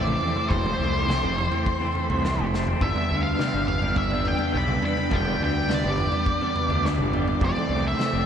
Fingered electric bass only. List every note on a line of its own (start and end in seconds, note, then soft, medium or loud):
0.00 0.15 A1 medium
0.50 0.73 E1 medium
0.80 1.25 C2 medium
1.23 1.46 F1 loud
2.10 2.41 C2 medium
2.39 2.73 F1 medium
2.81 2.93 G1 loud
3.11 3.33 D2 medium
3.54 4.32 G1 medium
4.54 4.77 B1 medium
5.12 5.35 E1 medium
5.41 5.85 D2 medium
5.84 6.07 G1 loud
6.69 7.00 D2 medium
6.98 7.32 G1 medium
7.41 7.53 F1 loud
7.69 7.92 C2 medium
8.13 8.26 F1 medium